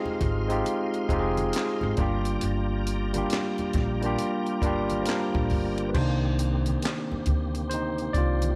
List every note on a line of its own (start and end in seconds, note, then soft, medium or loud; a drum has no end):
0.00 0.48 G#3 loud
0.00 0.49 C4 loud
0.00 0.50 D#4 loud
0.00 0.51 F4 loud
0.00 1.95 F4 medium
0.00 0.52 G4 loud
0.00 0.37 G#4 medium
0.00 1.95 D#5 medium
0.00 1.95 F5 medium
0.00 1.95 C6 medium
0.05 muted upright bass stroke soft
0.05 low conga medium
0.21 0.61 G#1 medium
0.21 kick medium
0.21 closed hi-hat soft
0.21 muted conga soft
0.21 high conga medium
0.21 low conga medium
0.48 1.01 G#3 medium
0.48 1.02 C4 medium
0.48 1.02 D#4 medium
0.48 1.03 F4 medium
0.48 closed hi-hat soft
0.52 1.04 G4 medium
0.65 closed hi-hat medium
0.65 muted conga soft
0.94 closed hi-hat soft
1.09 1.49 F1 medium
1.09 1.97 G#3 medium
1.09 1.98 C4 medium
1.09 1.99 D#4 medium
1.09 1.99 F4 medium
1.09 kick medium
1.09 closed hi-hat soft
1.09 muted conga soft
1.13 1.20 G4 medium
1.19 2.03 G#4 loud
1.37 closed hi-hat soft
1.37 high conga medium
1.53 snare medium
1.53 closed hi-hat loud
1.57 clap medium
1.81 1.97 G#1 medium
1.81 high conga medium
1.81 low conga medium
1.97 2.38 G1 medium
1.97 2.92 G3 medium
1.97 2.93 A#3 medium
1.97 2.93 D4 medium
1.97 5.90 F4 medium
1.97 2.94 F4 medium
1.97 5.91 D5 medium
1.97 5.90 G5 medium
1.97 5.90 A#5 medium
1.97 kick medium
1.97 closed hi-hat medium
1.97 muted conga soft
2.01 2.95 G4 medium
2.25 closed hi-hat soft
2.41 3.21 G1 medium
2.41 closed hi-hat medium
2.87 closed hi-hat medium
3.13 3.85 G3 medium
3.13 3.85 A#3 medium
3.13 3.86 D4 medium
3.13 3.86 F4 medium
3.13 closed hi-hat soft
3.13 high conga medium
3.18 3.87 G4 medium
3.30 snare loud
3.30 clap medium
3.30 closed hi-hat medium
3.30 muted conga soft
3.58 muted upright bass stroke soft
3.58 closed hi-hat soft
3.58 low conga medium
3.73 4.14 A#1 medium
3.73 kick medium
3.73 snare soft
3.73 closed hi-hat medium
3.73 high conga medium
3.73 low conga medium
4.02 4.55 G3 medium
4.02 4.56 A#3 medium
4.02 4.56 D4 medium
4.02 4.56 F4 medium
4.02 closed hi-hat soft
4.06 4.57 G4 medium
4.18 closed hi-hat medium
4.18 muted conga soft
4.46 closed hi-hat soft
4.62 5.02 G1 medium
4.62 5.80 G3 medium
4.62 5.80 A#3 medium
4.62 5.08 D4 medium
4.62 5.82 F4 medium
4.62 kick medium
4.62 closed hi-hat medium
4.62 muted conga soft
4.66 5.82 G4 medium
4.90 closed hi-hat soft
4.90 high conga medium
5.02 5.07 C5 medium
5.02 closed hi-hat medium
5.06 5.87 D4 medium
5.06 5.92 A#4 medium
5.06 snare medium
5.06 clap medium
5.06 muted conga soft
5.34 5.49 A#1 medium
5.34 kick medium
5.34 high conga soft
5.34 low conga soft
5.50 5.91 G1 medium
5.50 kick medium
5.50 open hi-hat soft
5.78 closed hi-hat soft
5.89 5.95 B4 medium
5.93 6.74 C2 loud
5.93 8.55 C3 medium
5.93 7.24 D#3 medium
5.93 8.55 A#3 medium
5.93 7.24 A#3 soft
5.93 8.55 C4 medium
5.93 7.24 D4 medium
5.93 7.68 D#4 medium
5.93 8.55 G4 medium
5.93 7.68 C5 medium
5.93 kick medium
5.93 crash medium
5.93 muted conga soft
6.39 closed hi-hat medium
6.66 closed hi-hat soft
6.66 high conga medium
6.82 snare medium
6.82 clap medium
6.82 closed hi-hat medium
6.82 muted conga soft
7.12 muted upright bass stroke soft
7.12 low conga medium
7.26 8.06 D2 medium
7.26 kick medium
7.26 closed hi-hat soft
7.26 muted conga soft
7.26 high conga medium
7.55 closed hi-hat soft
7.70 8.11 C5 medium
7.70 closed hi-hat medium
7.74 8.14 D#4 medium
7.98 closed hi-hat soft
8.13 8.55 C2 medium
8.13 8.55 D5 medium
8.13 kick medium
8.13 closed hi-hat medium
8.18 8.55 F4 medium
8.42 closed hi-hat soft
8.42 high conga medium